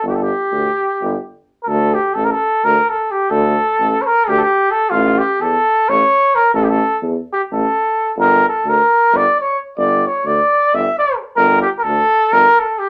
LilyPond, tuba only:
\new Staff \with { instrumentName = "Tuba" } { \clef bass \time 7/8 \tempo 4 = 130 g,,4 d,8 r8 g,,8 r4 | d,4 a,,8 r8 d,8 r4 | d,4 a,,8 r8 d,8 r4 | a,,4 e,8 r8 a,,8 r4 |
a,,4 e,8 r8 a,,8 r4 | g,,4 d,8 r8 g,,8 r4 | g,,4 d,8 r8 g,,8 r4 | g,,4 d,8 r8 g,,8 r4 | }